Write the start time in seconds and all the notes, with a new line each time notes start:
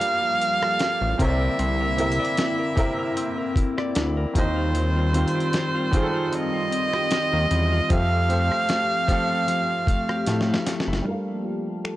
Already playing: F3 G3 A#3 D4 F4 G4 A4 A#4 F5
0.01 G3, closed hi-hat
0.22 F4
0.40 A#3, closed hi-hat
0.62 A4, cross-stick
0.79 A#3, snare, closed hi-hat
1.01 A1 F4
1.18 C2 C3 D3 C4 E4 A#4 E5, kick, closed hi-hat
1.22 C#5
1.29 D5
1.41 A#4
1.59 C2 C4, closed hi-hat
1.81 A#4
1.97 C3 C4 E4 A#4, closed hi-hat
2.01 E5
2.12 closed hi-hat
2.20 D5
2.25 closed hi-hat
2.37 E4, snare, closed hi-hat
2.59 A#4
2.76 C3 C4 E4 A#4, kick, closed hi-hat
2.80 E5
2.99 A#4
3.17 C4, closed hi-hat
3.38 A#4
3.56 E4, kick, closed hi-hat
3.78 D5, cross-stick
3.95 D2 E4, snare, closed hi-hat
4.17 A#4
4.34 D#2 D#3 G3 C4 F4 G4, kick, closed hi-hat
4.38 C5 D#5
4.56 F4
4.74 D#3, closed hi-hat
4.96 F4
5.13 D#3 C4 F4 G4, closed hi-hat
5.17 C5
5.28 closed hi-hat
5.35 G4
5.40 closed hi-hat
5.53 C4, snare, closed hi-hat
5.75 F4
5.91 D#3 C4 F4 G4, kick, closed hi-hat
5.96 G#4
6.03 A4
6.14 F4
6.32 D#3 D#5, closed hi-hat
6.54 F4
6.72 C4, closed hi-hat
6.93 G4, cross-stick
7.11 C4, snare, closed hi-hat
7.33 D#2 F4
7.51 E2 C4, closed hi-hat
7.72 F4
7.89 F2 F3 A3 C4 G4 A4 F5, kick, closed hi-hat
7.93 E5
8.29 F3 A3 C4 G4 A4, closed hi-hat
8.33 C5
8.51 G4, cross-stick
8.69 A3, snare, closed hi-hat
9.07 F3 A3 C4 G4 A4, kick, closed hi-hat
9.12 F5
9.48 F3, closed hi-hat
9.87 A3, kick, closed hi-hat
10.09 G4, cross-stick
10.26 A2 A3, snare, closed hi-hat
10.41 snare
10.48 E4
10.54 snare
10.66 A3, snare, closed hi-hat
10.80 snare
10.88 F#1 E4
10.93 snare
11.02 F3 G3 A#3 D4 G4 A5
11.06 A4 A#4
11.11 F5
11.45 F4
11.84 A4, finger snap